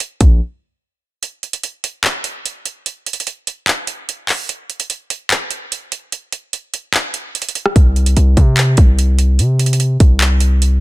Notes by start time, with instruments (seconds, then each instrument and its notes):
0.00 closed hi-hat
0.21 808-style bass A#1, kick, closed hi-hat
1.23 closed hi-hat
1.43 closed hi-hat
1.53 closed hi-hat
1.63 closed hi-hat
1.84 closed hi-hat
2.04 clap, closed hi-hat
2.24 closed hi-hat
2.46 closed hi-hat
2.66 closed hi-hat
2.86 closed hi-hat
3.06 closed hi-hat
3.13 closed hi-hat
3.20 closed hi-hat
3.27 closed hi-hat
3.47 closed hi-hat
3.67 clap, closed hi-hat
3.87 closed hi-hat
4.09 closed hi-hat
4.29 clap, open hi-hat
4.49 closed hi-hat
4.70 closed hi-hat
4.80 closed hi-hat
4.90 closed hi-hat
5.10 closed hi-hat
5.30 clap, closed hi-hat
5.51 closed hi-hat
5.72 closed hi-hat
5.92 closed hi-hat
6.12 closed hi-hat
6.32 closed hi-hat
6.53 closed hi-hat
6.74 closed hi-hat
6.94 clap, closed hi-hat
7.14 closed hi-hat
7.35 closed hi-hat
7.42 closed hi-hat
7.49 closed hi-hat
7.55 closed hi-hat
7.66 cross-stick
7.76 808-style bass C2, kick, closed hi-hat
7.96 closed hi-hat
8.06 closed hi-hat
8.17 808-style bass C2, closed hi-hat
8.37 808-style bass C3, kick, closed hi-hat
8.57 clap, closed hi-hat
8.77 808-style bass C2, kick, closed hi-hat
8.99 closed hi-hat
9.19 closed hi-hat
9.39 808-style bass C3, closed hi-hat
9.59 closed hi-hat
9.66 closed hi-hat
9.73 closed hi-hat
9.80 closed hi-hat
10.00 808-style bass C2, kick, closed hi-hat
10.20 clap, closed hi-hat
10.40 closed hi-hat
10.62 closed hi-hat